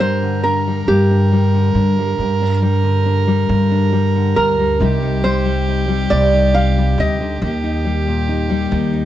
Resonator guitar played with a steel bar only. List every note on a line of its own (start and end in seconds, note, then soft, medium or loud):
0.00 0.43 C5 medium
0.43 0.86 A#4 medium
0.88 2.59 G4 medium
4.36 5.21 A#4 medium
5.24 6.09 C5 medium
6.10 6.53 D5 medium
6.55 6.97 F5 medium
7.00 7.84 D#5 medium